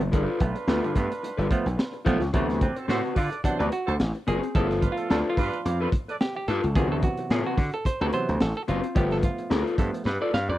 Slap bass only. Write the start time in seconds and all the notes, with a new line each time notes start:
0.00 F#1
0.13 G1
0.41 B1
0.67 D2
0.96 G2
1.38 G1
1.66 B1
2.06 B1
2.20 C#2
2.34 D2
2.89 A2
3.16 D3
3.44 muted slap bass stroke
3.60 D2
3.88 D2
4.00 A1
4.28 F#1
4.55 G1
5.11 D2
5.37 G2
5.65 F2
6.48 G2
6.64 C#2
6.76 D2
7.31 A2
7.58 D3
7.85 muted slap bass stroke
8.01 D2
8.29 D2
8.41 A1
8.69 F#1
8.96 G1
9.51 D2
9.78 G2
10.05 G2
10.34 G2
10.49 F2